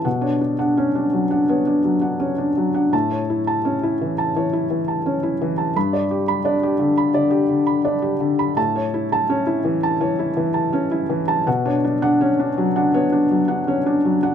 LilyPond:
\new Staff \with { instrumentName = "Felt piano" } { \time 4/4 \key b \minor \tempo 4 = 84 << { fis''16 cis''16 d'16 fis''16 cis''8 fis16 fis''16 cis''8 fis16 fis''16 cis''8 fis16 fis''16 | a''16 cis''16 e'16 a''16 cis''16 e'16 e16 a''16 cis''16 e'16 e16 a''16 cis''16 e'16 e16 a''16 | b''16 d''16 g'16 b''16 d''16 g'16 d16 b''16 d''16 g'16 d16 b''16 d''16 g'16 d16 b''16 | a''16 cis''16 e'16 a''16 cis''16 e'16 e16 a''16 cis''16 e'16 e16 a''16 cis''16 e'16 e16 a''16 |
fis''16 cis''16 d'16 fis''16 cis''8 fis16 fis''16 cis''16 d'16 fis16 fis''16 cis''8 fis16 fis''16 | } \\ { b,16 d'8 d'16 cis'16 d'8 d'16 b16 d'8 d'16 cis'16 d'8 d'16 | a,4 cis'8 r8 e8 r8 cis'8 r8 | g,4 d'8 r8 d8 r8 d'8 r8 | a,4 cis'8 r8 e8 r8 cis'8 r8 |
b,16 d'8 d'16 cis'16 d'8 d'16 b8 r16 d'16 cis'16 d'8 d'16 | } >> }